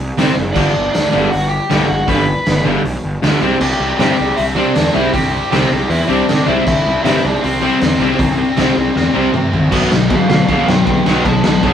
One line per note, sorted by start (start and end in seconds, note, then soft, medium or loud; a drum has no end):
0.00 0.11 C2 medium
0.18 0.33 C3 medium
0.18 0.30 C3 medium
0.18 0.33 G3 loud
0.18 0.34 C4 loud
0.18 snare loud
0.18 open hi-hat medium
0.37 0.56 F#1 medium
0.53 0.68 G1 loud
0.53 0.71 G2 medium
0.53 0.90 D4 medium
0.53 0.89 D5 medium
0.53 kick loud
0.53 crash loud
0.57 0.72 D3 loud
0.57 0.71 G3 medium
0.76 0.88 G1 medium
0.92 1.07 D2 medium
0.92 1.29 D4 medium
0.92 1.29 D5 medium
0.92 snare loud
0.92 open hi-hat medium
1.12 1.26 G1 medium
1.12 1.28 G2 medium
1.12 1.28 D3 medium
1.12 1.29 G3 medium
1.30 1.57 G1 medium
1.30 1.49 F#4 medium
1.30 1.48 F#5 medium
1.30 open hi-hat medium
1.49 1.86 G4 medium
1.49 1.88 G5 medium
1.70 1.83 C2 medium
1.70 1.85 G2 medium
1.70 1.86 D3 loud
1.70 1.86 G3 loud
1.70 snare loud
1.70 open hi-hat medium
1.88 2.02 G1 medium
1.88 2.07 F#4 medium
1.88 2.08 F#5 loud
2.08 2.33 G1 loud
2.08 2.23 G2 medium
2.08 2.24 D3 medium
2.08 2.24 G3 loud
2.08 2.62 B4 medium
2.08 2.62 B5 medium
2.08 kick loud
2.08 open hi-hat medium
2.46 2.59 G1 medium
2.46 snare loud
2.46 open hi-hat medium
2.64 2.78 G1 medium
2.64 2.80 G2 medium
2.64 2.81 D3 medium
2.64 2.81 G3 medium
2.85 2.97 B1 medium
2.85 open hi-hat medium
3.04 3.16 G1 medium
3.22 3.35 D2 medium
3.22 3.38 G2 medium
3.22 3.38 D3 medium
3.22 3.39 G3 medium
3.22 snare loud
3.22 open hi-hat medium
3.41 3.54 C2 medium
3.41 3.57 C3 medium
3.41 3.57 G3 medium
3.41 3.58 C4 medium
3.60 3.73 C2 medium
3.60 3.79 C3 medium
3.60 3.80 G3 loud
3.60 3.80 C4 medium
3.60 3.97 G4 medium
3.60 3.98 G5 loud
3.60 crash loud
3.80 3.92 C2 medium
3.80 3.98 C3 medium
3.80 3.99 G3 medium
3.80 3.99 C4 medium
3.98 4.11 G2 medium
3.98 4.17 C3 medium
3.98 4.15 C3 medium
3.98 4.18 G3 medium
3.98 4.15 G3 medium
3.98 4.18 C4 medium
3.98 4.15 C4 medium
3.98 4.34 G4 medium
3.98 4.38 G5 loud
3.98 snare loud
3.98 open hi-hat medium
4.18 4.31 C2 medium
4.18 4.36 C3 medium
4.18 4.37 G3 medium
4.18 4.37 C4 medium
4.36 4.62 C2 medium
4.36 4.56 C3 medium
4.36 4.56 G3 medium
4.36 4.57 C4 medium
4.36 4.42 E4 medium
4.36 4.43 E5 medium
4.36 open hi-hat medium
4.55 4.72 C3 medium
4.55 4.75 C3 medium
4.55 4.75 G3 medium
4.55 4.72 G3 loud
4.55 4.76 C4 medium
4.55 4.72 C4 loud
4.55 4.92 D4 medium
4.55 4.96 D5 medium
4.75 4.88 E2 medium
4.75 4.93 C3 loud
4.75 4.93 G3 loud
4.75 4.94 C4 loud
4.75 snare loud
4.75 open hi-hat medium
4.93 5.07 C2 medium
4.93 5.12 C3 medium
4.93 5.09 C3 medium
4.93 5.12 G3 medium
4.93 5.10 G3 medium
4.93 5.13 C4 medium
4.93 5.10 C4 medium
4.93 5.12 E4 medium
4.93 5.13 E5 medium
5.12 5.38 C2 medium
5.12 5.32 C3 medium
5.12 5.32 G3 loud
5.12 5.32 C4 loud
5.12 5.49 G4 medium
5.12 5.50 G5 loud
5.12 kick loud
5.12 open hi-hat medium
5.32 5.51 C3 medium
5.32 5.51 G3 medium
5.32 5.52 C4 medium
5.50 5.64 C2 medium
5.50 5.69 C3 medium
5.50 5.68 C3 medium
5.50 5.70 G3 medium
5.50 5.68 G3 medium
5.50 5.70 C4 medium
5.50 5.68 C4 loud
5.50 5.87 G4 medium
5.50 5.91 G5 medium
5.50 snare loud
5.50 open hi-hat medium
5.70 5.84 C2 medium
5.70 5.89 C3 medium
5.70 5.90 G3 medium
5.70 5.90 C4 loud
5.89 6.02 E2 loud
5.89 6.08 C3 medium
5.89 6.09 G3 medium
5.89 6.09 C4 medium
5.89 6.07 E4 medium
5.89 6.09 E5 medium
5.89 open hi-hat medium
6.08 6.21 C2 medium
6.08 6.24 C3 loud
6.08 6.27 C3 medium
6.08 6.25 G3 loud
6.08 6.28 G3 medium
6.08 6.28 C4 medium
6.08 6.25 C4 loud
6.08 6.45 D4 medium
6.08 6.49 D5 medium
6.28 6.46 C3 loud
6.28 6.41 C3 medium
6.28 6.47 G3 loud
6.28 6.47 C4 loud
6.28 snare loud
6.28 open hi-hat medium
6.46 6.60 C2 medium
6.46 6.62 C3 medium
6.46 6.66 C3 medium
6.46 6.63 G3 loud
6.46 6.67 G3 medium
6.46 6.63 C4 loud
6.46 6.67 C4 medium
6.46 6.65 E4 medium
6.46 6.65 E5 medium
6.66 6.79 C2 medium
6.66 6.85 C3 medium
6.66 6.85 G3 loud
6.66 6.86 C4 loud
6.66 7.01 E4 medium
6.66 7.02 E5 loud
6.66 kick loud
6.66 crash medium
6.86 6.98 C2 medium
6.86 7.04 C3 medium
6.86 7.05 G3 medium
6.86 7.05 C4 loud
7.03 7.17 G2 loud
7.03 7.20 C3 medium
7.03 7.23 C3 medium
7.03 7.24 G3 medium
7.03 7.20 G3 medium
7.03 7.24 C4 medium
7.03 7.21 C4 medium
7.03 7.21 E4 medium
7.03 7.24 E5 medium
7.03 snare loud
7.03 open hi-hat medium
7.22 7.37 C2 medium
7.22 7.40 C3 medium
7.22 7.41 G3 loud
7.22 7.42 C4 loud
7.22 7.42 D4 medium
7.22 7.41 D5 medium
7.40 7.60 C3 medium
7.40 7.61 G3 medium
7.40 9.29 C4 medium
7.40 7.61 C4 medium
7.40 9.28 C5 medium
7.40 open hi-hat medium
7.44 7.68 C2 loud
7.61 7.80 C3 medium
7.61 7.78 C3 medium
7.61 7.80 G3 medium
7.61 7.78 G3 loud
7.61 7.81 C4 medium
7.61 7.78 C4 loud
7.81 7.94 E2 medium
7.81 7.99 C3 loud
7.81 7.98 G3 loud
7.81 7.99 C4 loud
7.81 snare loud
7.81 open hi-hat medium
8.00 8.12 C2 medium
8.00 8.17 C3 medium
8.00 8.16 C3 medium
8.00 8.17 G3 medium
8.00 8.16 G3 medium
8.00 8.17 C4 medium
8.18 8.43 C2 loud
8.18 8.36 C3 loud
8.18 8.37 G3 loud
8.18 8.37 C4 loud
8.18 kick loud
8.18 open hi-hat medium
8.37 8.55 C3 medium
8.37 8.56 G3 medium
8.37 8.55 C4 loud
8.56 8.70 C2 medium
8.56 8.74 C3 medium
8.56 8.73 C3 medium
8.56 8.75 G3 medium
8.56 8.73 G3 medium
8.56 8.75 C4 medium
8.56 8.74 C4 medium
8.56 snare loud
8.56 open hi-hat medium
8.75 8.89 C2 medium
8.75 8.94 C3 medium
8.75 8.94 G3 medium
8.75 8.94 C4 loud
8.95 9.08 E2 medium
8.95 9.13 C3 medium
8.95 9.14 G3 medium
8.95 9.14 C4 medium
8.95 snare medium
9.14 9.28 C2 medium
9.14 9.30 C3 medium
9.14 9.32 C3 medium
9.14 9.30 G3 loud
9.14 9.33 G3 medium
9.14 9.30 C4 loud
9.14 9.33 C4 medium
9.33 9.51 C3 loud
9.33 9.46 C3 medium
9.33 9.52 G3 loud
9.33 9.52 C4 loud
9.33 mid tom medium
9.53 9.73 C2 medium
9.53 9.71 C3 medium
9.53 9.71 G3 medium
9.53 9.71 C4 medium
9.53 floor tom medium
9.72 9.86 B1 medium
9.72 11.04 B2 medium
9.72 9.90 B2 medium
9.72 9.90 F#3 medium
9.72 11.05 F#3 medium
9.72 9.91 B3 loud
9.72 11.05 B3 loud
9.72 kick loud
9.72 crash loud
9.91 10.06 B1 medium
9.91 10.08 B2 medium
9.91 10.09 F#3 medium
9.91 snare loud
10.09 10.24 B2 medium
10.09 10.28 B2 medium
10.09 10.28 F#3 medium
10.09 10.28 A4 medium
10.09 10.28 F5 medium
10.09 kick loud
10.09 ride medium
10.29 10.44 D2 medium
10.29 10.47 B2 medium
10.29 10.47 F#3 medium
10.29 10.46 A4 medium
10.29 10.46 F5 medium
10.29 snare loud
10.47 10.62 B1 loud
10.47 10.67 B2 medium
10.47 10.65 A4 medium
10.47 10.66 F5 medium
10.47 kick loud
10.47 ride medium
10.52 10.68 F#3 loud
10.52 10.68 B3 loud
10.66 10.82 F#2 medium
10.66 10.86 B2 medium
10.66 10.84 B4 medium
10.66 10.86 G5 medium
10.66 snare loud
10.71 10.86 F#3 medium
10.86 11.00 B1 medium
10.86 11.05 B2 medium
10.86 11.05 F#3 medium
10.86 11.04 B4 medium
10.86 11.05 G5 medium
10.86 kick loud
10.86 ride medium
11.06 11.20 B1 medium
11.06 11.23 B2 medium
11.06 11.25 B2 medium
11.06 11.24 F#3 medium
11.06 11.25 F#3 medium
11.06 11.27 B3 medium
11.06 11.25 B3 medium
11.06 11.24 B4 medium
11.06 11.25 G5 medium
11.06 snare loud
11.24 11.39 B1 medium
11.24 11.73 B2 medium
11.24 11.43 B2 medium
11.24 11.73 F#3 loud
11.24 11.43 F#3 medium
11.24 11.73 B3 medium
11.24 11.42 C5 medium
11.24 11.43 A5 medium
11.24 kick loud
11.24 ride medium
11.43 11.58 B1 medium
11.43 11.62 B2 medium
11.43 11.62 F#3 medium
11.43 11.61 C5 medium
11.43 11.62 A5 medium
11.43 snare loud
11.63 11.73 F#2 medium
11.63 11.73 B2 medium
11.63 11.73 F#3 medium
11.63 11.73 B3 medium
11.63 11.73 C5 medium
11.63 11.73 A5 medium
11.63 kick loud
11.63 ride medium